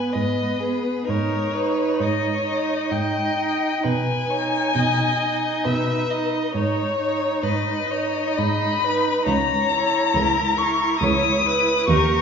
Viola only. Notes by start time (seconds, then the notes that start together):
Already playing: B3
0.61 B3
1.06 D#4
1.54 D#4
2.44 D#4
3.38 D#4
4.29 D#4
5.21 D#4
6.09 D#4
6.55 D#4
6.98 D#4
7.90 D#4
8.84 D#4
9.71 E4
10.59 E4
11.44 E4
11.89 G4